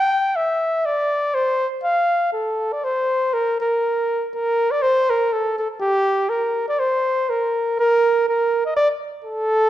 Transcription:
flugelhorn
Already playing: G5
0.36 E5
0.86 D5
1.34 C5
1.83 F5
2.33 A4
2.72 D5
2.84 C5
3.33 A#4
3.60 A#4
4.34 A#4
4.71 D5
4.82 C5
5.10 A#4
5.33 A4
5.59 A4
5.81 G4
6.29 A#4
6.68 D5
6.79 C5
7.30 A#4
7.80 A#4
8.29 A#4
8.65 D#5
8.76 D5
9.24 A4

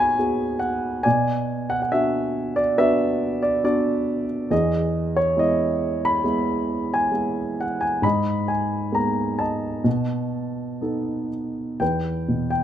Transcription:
grand piano
Already playing: G#2 B3 F#4 G#4 C#5 D#5 G#5 B5 C#6
0.18 B3 F#4 G#4
0.59 F#5
1.03 B2 D5 G#5
1.70 F#5
1.82 F#5
1.92 B3 D4 F#4 E5
2.56 D5
2.78 B3 D4 F#4 B4 E5
3.43 D5
3.64 B3 D4 F#4 D5
4.51 E2 G#4 D#5
5.17 C#5
5.36 G#3 B3 E4 D#5
6.05 B5
6.24 G#3 B3 E4
6.94 G#5
7.12 G#3 B3 E4
7.61 F#5
7.81 G#5
8.02 G#2 D#5 B5
8.48 G#5
8.92 G#3 A#3 B3 A#5
9.39 D#5 A5
9.84 B2
10.81 B3 D#4 A4
11.80 E2 B4 G5
12.28 B2
12.50 G5

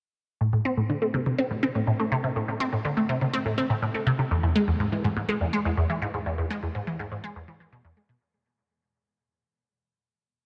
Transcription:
synth arpeggio sound
0.41 A2
0.53 A2
0.65 C4
0.77 A2
0.90 D3
1.02 A3
1.14 C3
1.26 C3
1.38 C4
1.51 A2
1.63 C4
1.75 A2
1.87 A2
2.00 A3
2.12 C3
2.24 C3
2.36 A2
2.48 A2
2.60 C4
2.73 A2
2.85 D3
2.97 A3
3.09 C3
3.21 C3
3.33 C4
3.46 A2
3.58 C4
3.70 A2
3.82 A2
3.94 A3
4.07 C3
4.19 C3
4.31 E2
4.43 E2
4.56 G#3
4.68 E2
4.80 G#2
4.92 E3
5.04 G#2
5.17 G#2
5.29 G#3
5.41 E2
5.53 G#3
5.65 E2
5.77 E2
5.90 E3
6.02 G#2
6.14 G#2
6.26 E2
6.38 E2
6.50 G#3
6.63 E2
6.75 G#2
6.87 E3
6.99 G#2
7.12 G#2
7.24 G#3
7.36 E2
7.48 E3
7.60 E3
7.72 B2
7.85 E2
7.97 G#3
8.09 B2

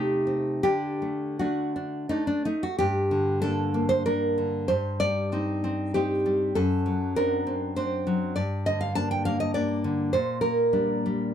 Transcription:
nylon-string guitar
Already playing: C3 A3 D#4 G4
0.27 C4
0.63 D3 D4 G4
1.02 A3
1.39 A3 D4 F#4
1.76 D4
2.09 A3 D4 D#4
2.27 D4
2.45 A3 D#4
2.63 F#4
2.79 G2 G4
3.11 D3
3.42 A#3 D4 A4
3.74 A#3
3.89 C5
4.06 A#3 D4 A#4
4.38 D3
4.68 G2 C5
5.00 G3 D5
5.32 C4 D#4
5.64 C4
5.94 C4 D#4 G4
6.26 G3
6.55 F#2 A4
6.86 F#3
7.16 C4 D4 A#4
7.47 C4
7.76 C4 D4 C5
8.07 F#3
8.36 G2 D5
8.66 D3 D#5
8.81 F5
8.95 A#3 D4 A5
9.11 G5
9.25 A#3 F5
9.40 D#5
9.54 A#3 D4 D5
9.84 D3
10.13 A#2 C5
10.41 A#3 A#4
10.73 G3 D4
11.06 G3

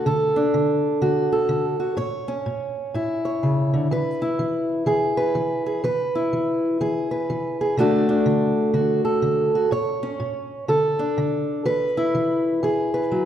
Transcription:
steel-string acoustic guitar
Already playing: A3
0.06 D3 A4
0.36 D4
0.54 D3
1.02 D3 F#4
1.32 A4
1.49 D3
1.80 F#4
1.97 A2 C#5
2.28 C#4
2.46 A2
2.94 A2 E4
3.25 C#5
3.43 C#3
3.74 D3
3.91 E3 B4
4.22 E4
4.39 E3
4.86 E3 G#4
5.17 B4
5.35 E3
5.66 G#4
5.84 E3 B4
6.15 E4
6.33 E3
6.81 E3 G#4
7.11 B4
7.30 E3
7.61 G#4
7.77 D3 A3 D4 F#4 A4
8.09 D4
8.26 D3
8.74 D3 F#4
9.05 A4
9.22 D3
9.55 F#4
9.71 A2 C#5
10.03 C#4
10.20 A2
10.68 D3 A4
10.99 D4
11.18 D3
11.65 E3 B4
11.97 E4
12.15 E3
12.63 E3 G#4
12.94 B4
13.12 F#3

